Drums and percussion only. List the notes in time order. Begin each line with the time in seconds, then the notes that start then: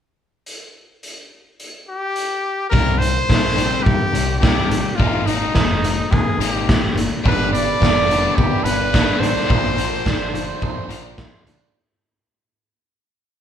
0.46 closed hi-hat
1.03 closed hi-hat
1.60 closed hi-hat
2.16 closed hi-hat
2.73 kick
3.02 closed hi-hat
3.30 kick, snare
3.58 closed hi-hat
3.86 kick
4.15 closed hi-hat
4.43 kick, snare
4.71 closed hi-hat
5.00 kick
5.27 closed hi-hat
5.55 kick, snare
5.84 closed hi-hat
6.13 kick
6.41 closed hi-hat
6.69 kick, snare
6.98 closed hi-hat
7.26 kick
7.55 closed hi-hat
7.82 kick, snare
8.11 closed hi-hat
8.38 kick
8.66 closed hi-hat
8.94 kick, snare
9.23 closed hi-hat
9.37 snare
9.50 kick
9.78 closed hi-hat
10.06 kick, snare
10.35 closed hi-hat
10.62 kick
10.90 closed hi-hat
11.18 kick, snare
11.47 closed hi-hat